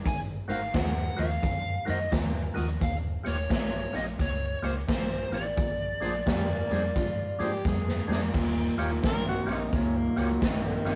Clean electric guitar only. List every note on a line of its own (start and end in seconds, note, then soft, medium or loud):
0.05 0.44 G#2 medium
0.05 0.45 D#3 medium
0.48 0.71 G#2 medium
0.48 0.72 D#3 medium
0.74 1.14 G#2 medium
0.74 1.14 F3 medium
1.18 1.41 G#2 medium
1.18 1.41 F3 medium
1.43 1.82 G#2 medium
1.43 1.83 D#3 medium
1.87 2.09 G#2 medium
1.87 2.10 D#3 medium
2.11 2.51 G#2 medium
2.11 2.52 F3 medium
2.55 2.78 G#2 medium
2.55 2.79 F3 medium
2.80 3.20 D#2 medium
2.80 3.21 A#2 medium
3.24 3.47 D#2 medium
3.24 3.48 A#2 medium
3.49 3.89 D#2 medium
3.49 3.90 C3 medium
3.94 4.17 D#2 medium
3.94 4.17 C3 medium
4.19 4.59 D#2 medium
4.19 4.59 A#2 medium
4.62 4.86 D#2 medium
4.62 4.86 A#2 medium
4.88 5.28 D#2 medium
4.88 5.28 C3 medium
5.32 5.55 D#2 medium
5.32 5.55 C3 medium
5.57 5.97 A#2 medium
5.57 5.97 F3 medium
6.01 6.24 A#2 medium
6.01 6.24 F3 medium
6.26 6.66 A#2 medium
6.26 6.66 G3 medium
6.71 6.93 A#2 medium
6.71 6.94 G3 medium
6.96 7.35 A#2 medium
6.96 7.36 F3 medium
7.40 7.62 A#2 medium
7.40 7.63 F3 medium
7.65 8.05 A#2 medium
7.65 8.05 G3 medium
8.09 8.32 A#2 medium
8.09 8.32 G3 medium
8.34 8.74 D#2 medium
8.34 8.74 A#2 medium
8.78 9.01 D#2 medium
8.78 9.01 A#2 medium
9.02 9.43 D#2 medium
9.02 9.43 C3 medium
9.47 9.70 D#2 medium
9.47 9.70 C3 medium
9.72 10.12 D#2 medium
9.72 10.12 A#2 medium
10.16 10.39 D#2 medium
10.16 10.39 A#2 medium
10.41 10.81 D#2 medium
10.41 10.81 C3 medium
10.86 10.95 D#2 medium
10.86 10.95 C3 medium